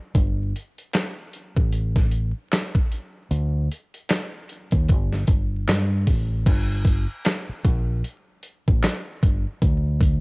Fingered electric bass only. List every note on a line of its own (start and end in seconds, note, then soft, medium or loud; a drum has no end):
0.15 0.52 G1 medium
1.57 2.31 A1 medium
3.31 3.68 D2 loud
4.72 4.91 D#2 medium
4.89 5.26 G1 medium
5.28 5.65 G1 medium
5.68 6.04 G2 medium
6.07 6.44 A1 medium
6.46 7.05 G1 loud
7.49 muted fingered electric bass stroke soft
7.65 8.02 A#1 loud
8.68 8.83 A1 medium
9.23 9.45 G1 medium
9.62 10.20 D2 medium